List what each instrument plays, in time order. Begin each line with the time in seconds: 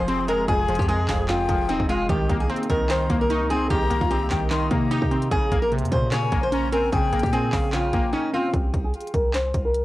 Already playing: 808-style bass F1, synth pluck F2 F3 G#3, string section C3 F3 G#4
0.00 steel-string acoustic guitar C5
0.08 synth pluck C4, flute C6, closed hi-hat
0.28 synth pluck G#3, steel-string acoustic guitar A#4, flute A#5, closed hi-hat
0.48 808-style bass F1, synth pluck F2, steel-string acoustic guitar G#4, flute G#5, kick, closed hi-hat
0.68 808-style bass F1, synth pluck F3, closed hi-hat
0.75 808-style bass F2, kick, closed hi-hat
0.79 steel-string acoustic guitar G4, closed hi-hat
0.88 synth pluck G#3, steel-string acoustic guitar G#4, closed hi-hat
1.09 808-style bass F1, synth pluck F2, flute F5, kick, snare, clap, open hi-hat
1.29 synth pluck F2, steel-string acoustic guitar F4, flute G5, snare, clap, closed hi-hat
1.49 808-style bass F1, synth pluck F3, kick, closed hi-hat
1.69 808-style bass D#1, synth pluck C4, steel-string acoustic guitar D#4, closed hi-hat
1.80 808-style bass F1, kick
1.89 synth pluck G#3, steel-string acoustic guitar F4, flute F5, closed hi-hat
2.09 808-style bass C2, string section C3 A#3 D#4, synth pluck D#3, steel-string acoustic guitar G4, kick, closed hi-hat
2.29 808-style bass C2, synth pluck A#3, kick, closed hi-hat
2.40 steel-string acoustic guitar G#4
2.50 synth pluck C4, closed hi-hat
2.56 closed hi-hat
2.63 closed hi-hat
2.70 808-style bass C2, synth pluck D#3, steel-string acoustic guitar A#4, kick, closed hi-hat
2.90 synth pluck D#3, steel-string acoustic guitar C5, flute A#5, snare, clap, closed hi-hat
3.10 808-style bass C2, synth pluck A#3, kick, closed hi-hat
3.21 steel-string acoustic guitar A#4
3.30 synth pluck D#4, flute C#6, closed hi-hat
3.41 808-style bass C#2
3.50 synth pluck C4, steel-string acoustic guitar G#4, flute C6, closed hi-hat
3.56 808-style bass C2
3.70 808-style bass C2, synth pluck D#3, steel-string acoustic guitar G4, flute A#5, kick, closed hi-hat
3.90 808-style bass C2, synth pluck A#3, closed hi-hat
4.01 808-style bass C2, steel-string acoustic guitar F4, kick
4.11 synth pluck C4, steel-string acoustic guitar G4, closed hi-hat
4.31 808-style bass C2, synth pluck D#3, flute G5, kick, snare, clap, closed hi-hat
4.51 synth pluck D#3, steel-string acoustic guitar D#4, flute C6, snare, clap, closed hi-hat
4.71 808-style bass C3, synth pluck A#3, flute A#5, kick, closed hi-hat
4.91 synth pluck D#4, steel-string acoustic guitar G4, closed hi-hat
5.02 808-style bass C3, kick
5.11 synth pluck C4, closed hi-hat
5.22 closed hi-hat
5.31 808-style bass A#1, string section A#2, synth pluck C#3, steel-string acoustic guitar G#4, kick, closed hi-hat
5.52 808-style bass A#1, synth pluck A#3, kick, closed hi-hat
5.62 steel-string acoustic guitar A#4
5.72 synth pluck C3, closed hi-hat
5.78 808-style bass F2, closed hi-hat
5.85 closed hi-hat
5.92 808-style bass A#2, synth pluck C#3, steel-string acoustic guitar C5, kick, closed hi-hat
6.12 synth pluck C#3, steel-string acoustic guitar C#5, flute G#5, snare, clap, closed hi-hat
6.32 808-style bass A#1, synth pluck A#3, kick, closed hi-hat
6.43 steel-string acoustic guitar C5
6.52 synth pluck C#4, flute A#5, closed hi-hat
6.72 synth pluck C4, steel-string acoustic guitar A#4, flute G#5, closed hi-hat
6.92 808-style bass A#1, synth pluck C#3, steel-string acoustic guitar G#4, flute G5, kick, closed hi-hat
7.13 808-style bass A#1, synth pluck A#3, closed hi-hat
7.19 808-style bass A#2, steel-string acoustic guitar G4, kick, closed hi-hat
7.26 closed hi-hat
7.33 synth pluck C4, steel-string acoustic guitar G#4, closed hi-hat
7.53 808-style bass A#1, synth pluck C#3, flute F5, kick, snare, clap, open hi-hat
7.73 synth pluck C#3, steel-string acoustic guitar F4, flute G5, snare, clap, closed hi-hat
7.93 808-style bass A#1, synth pluck A#3, kick, closed hi-hat
8.13 synth pluck C#4, steel-string acoustic guitar D#4
8.33 synth pluck C4, steel-string acoustic guitar F4, flute F5
8.54 808-style bass C2, steel-string acoustic guitar G4, kick, closed hi-hat
8.74 808-style bass C2, kick, closed hi-hat
8.84 steel-string acoustic guitar G#4
8.94 closed hi-hat
9.01 closed hi-hat
9.07 closed hi-hat
9.14 808-style bass C2, steel-string acoustic guitar A#4, kick, closed hi-hat
9.34 steel-string acoustic guitar C5, snare, clap, closed hi-hat
9.54 808-style bass C2, kick, closed hi-hat
9.65 steel-string acoustic guitar A#4
9.74 closed hi-hat